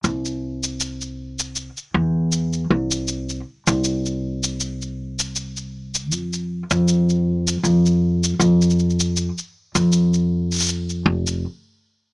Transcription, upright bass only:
X:1
M:4/4
L:1/16
Q:"Swing 16ths" 1/4=79
K:C
V:1 name="Upright bass" clef=bass
C,,8- C,, z E,,4 C,,2- | C,,2 z C,,12- C,, | F,,3 F,,4- F,, F,,4 F,,4- | F,, z2 F,,6- F,, F,,,2 z4 |]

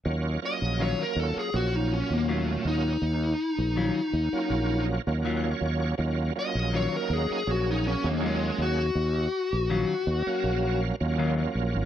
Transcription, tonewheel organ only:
X:1
M:4/4
L:1/16
Q:"Swing 16ths" 1/4=81
K:Ebm
V:1 name="Tonewheel organ"
z16 | z12 g d3 | z16 | z16 |]
V:2 name="Tonewheel organ"
[G,B,DF]2 [G,B,DF]3 [G,B,DF]3 [B,,G,DF]6- [B,,G,DF] z | z6 z [G,B,DF]4 [G,B,DF]2 [G,B,DF]3 | [G,B,DF]2 [G,B,DF]3 [G,B,DE]3 [G,B,DA]6- [G,B,DA] z | z6 z [G,B,Df]4 [G,B,DF]2 [G,B,DF]3 |]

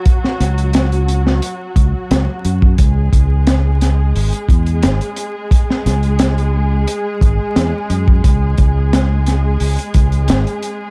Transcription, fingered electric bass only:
X:1
M:4/4
L:1/8
Q:1/4=88
K:G#phr
V:1 name="Fingered electric bass" clef=bass
z C,,3 z C,, C,, F,, | C,, C,,3 G,,, E,, G,,, z | z C,,3 z G,,, E,, F,, | C,, C,,3 C,, C,, G,,, z |]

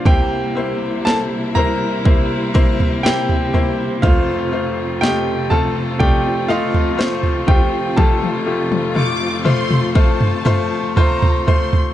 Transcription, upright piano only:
X:1
M:4/4
L:1/8
Q:1/4=61
K:Fmix
V:1 name="Upright piano"
[B,=Ec] [B,Ec] [B,Ec] [B,Ec] [B,Ec] [B,Ec] [B,Ec] [B,Ec] | [A,Fc] [A,Fc] [A,Fe] [A,FA] [A,Fd] [A,Fe] [A,Fc] [A,Fc] | [A,FG] [A,FG] [A,FA] [A,Fc] [A,Fc] [A,Fc] [A,Fc] [A,Fc] |]
V:2 name="Upright piano" clef=bass
[C,,C,]8 | [F,,,F,,]8 | [F,,,F,,]8 |]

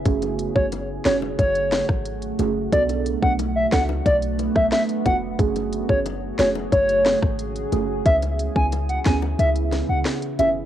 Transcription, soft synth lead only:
X:1
M:4/4
L:1/16
Q:1/4=90
K:F#m
V:1 name="Soft synth lead"
z3 c z2 c z c3 z4 z | d z2 f z e f z d z2 e e z f z | z3 c z2 c z c3 z4 z | e z2 g z f g z e z2 f z2 e z |]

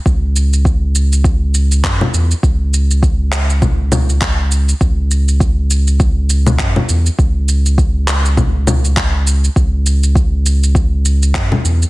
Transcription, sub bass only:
X:1
M:4/4
L:1/8
Q:"Swing 16ths" 1/4=101
K:C#m
V:1 name="Sub bass" clef=bass
C,,6 F,, E,, | C,,8 | C,,6 F,, E,, | C,,8 |
C,,6 F,, E,, |]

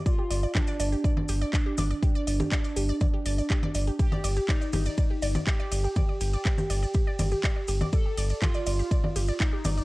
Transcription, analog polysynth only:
X:1
M:4/4
L:1/8
Q:1/4=122
K:Cdor
V:1 name="Analog polysynth"
F2 D4 D2- | D8 | G2 E4 G2- | G8 |
A2 F4 E2 |]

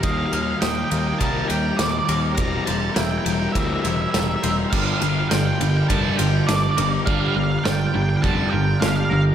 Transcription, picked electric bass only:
X:1
M:4/4
L:1/8
Q:1/4=102
K:Gm
V:1 name="Picked electric bass" clef=bass
E,, E,, E,, E,, C,, E,, E,, E,, | =E,,, E,,, E,,, E,,, D,, E,,, E,,, E,,, | G,,, G,,, G,,, G,,, F,,, G,,, G,,, G,,, | G,,, G,,, G,,, G,,, F,,, G,,, G,,, G,,, |]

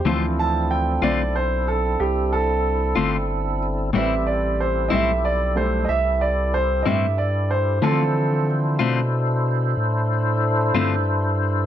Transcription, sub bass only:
X:1
M:12/8
L:1/8
Q:3/8=62
K:Ddor
V:1 name="Sub bass" clef=bass
D,,3 B,,,3 C,,3 G,,,3 | A,,,3 B,,,3 C,,3 G,,3 | D,3 B,,3 A,,3 G,,3 |]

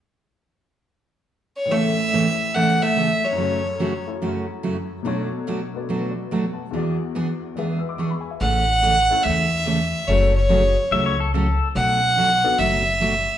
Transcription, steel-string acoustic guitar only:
X:1
M:4/4
L:1/8
Q:"Swing" 1/4=143
K:A
V:1 name="Steel-string acoustic guitar"
z8 | [A,,C,E,A,CA] z [A,,C,E,A,CA] z [A,,C,E,A,CA] z [A,,C,E,A,CA] z | [F,,C,F,A,CF] z [F,,C,F,A,CF] z [F,,C,F,A,CF] z [F,,C,F,A,CF] z | [B,,F,A,DF] z [B,,F,A,DF] z [B,,F,A,DF] z [B,,F,A,DF] z |
[E,B,DG] z [E,B,DG] z [E,B,DG] z [E,B,DG] z | [C,E,A,CA] z [C,E,A,CA] z [C,E,A,CA] z [C,E,A,CA] z | [C,F,A,CF] z [C,F,A,CF] z [C,F,A,CF] z [C,F,A,CF] z | [B,,F,A,DF] z [B,,F,A,DF] z [B,,F,A,DF] z [B,,F,A,DF] z |]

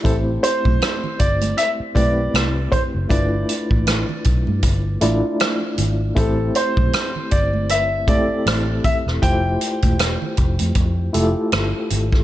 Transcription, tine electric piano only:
X:1
M:4/4
L:1/16
Q:"Swing 16ths" 1/4=78
K:Am
V:1 name="Tine electric piano"
[A,CEGc]6- [A,CEGc] z3 [A,CEGB]6 | [A,DEFB]6- [A,DEFB] z3 [A,DEFd]6 | [A,CEGc]6- [A,CEGc] z3 [A,CEGA]6 | [A,EFGc]6- [A,EFGc] z3 [A,EFGA]6 |]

